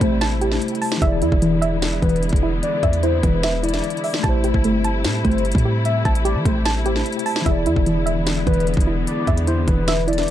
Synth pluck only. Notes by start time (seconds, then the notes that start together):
Already playing: G4 A5
0.01 A3
0.21 A5
0.41 G4
0.82 A5
1.02 E5
1.22 E4
1.42 E3
1.62 E5
2.02 E3
2.43 E4
2.83 E5
3.03 E4
3.23 E3
3.44 E5
3.63 E4
4.04 E5
4.23 A5
4.44 G4
4.65 A3
4.85 A5
5.25 A3
5.65 G4
6.05 A5
6.25 G4
6.46 A3
6.65 A5
6.86 G4
7.26 A5
7.46 E5
7.67 E4
7.87 E3
8.06 E5
8.47 E3
8.87 E4
9.28 E5
9.48 E4
9.68 E3
9.88 E5
10.07 E4